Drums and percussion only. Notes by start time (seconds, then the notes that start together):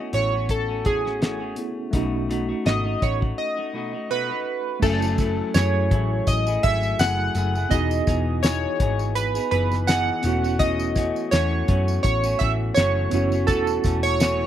0.13 closed hi-hat
0.49 kick, closed hi-hat
0.85 kick, closed hi-hat
1.06 snare
1.22 snare, closed hi-hat
1.56 closed hi-hat
1.93 kick, closed hi-hat
2.31 closed hi-hat
2.66 snare, closed hi-hat
3.02 kick, closed hi-hat
3.22 kick
4.82 kick, crash, tambourine
5.02 tambourine
5.18 kick, closed hi-hat, tambourine
5.54 snare, closed hi-hat, tambourine
5.91 kick, closed hi-hat
6.27 kick, closed hi-hat, tambourine
6.47 tambourine
6.63 kick, closed hi-hat
6.83 tambourine
6.99 snare, closed hi-hat, tambourine
7.35 closed hi-hat, tambourine
7.55 tambourine
7.71 kick, closed hi-hat, tambourine
7.91 tambourine
8.07 kick, closed hi-hat, tambourine
8.43 snare, closed hi-hat, tambourine
8.80 kick, closed hi-hat
8.99 tambourine
9.15 closed hi-hat, tambourine
9.35 tambourine
9.51 closed hi-hat
9.72 snare, tambourine
9.88 snare, closed hi-hat, tambourine
10.23 closed hi-hat, tambourine
10.44 tambourine
10.59 kick, closed hi-hat, tambourine
10.79 tambourine
10.96 kick, closed hi-hat, tambourine
11.16 tambourine
11.32 snare, closed hi-hat, tambourine
11.68 kick, closed hi-hat
11.88 tambourine
12.04 kick, closed hi-hat, tambourine
12.24 tambourine
12.40 kick, closed hi-hat
12.76 snare, closed hi-hat, tambourine
13.11 closed hi-hat, tambourine
13.32 tambourine
13.48 kick, closed hi-hat, tambourine
13.67 tambourine
13.84 kick, closed hi-hat, tambourine
14.04 tambourine
14.20 snare, closed hi-hat, tambourine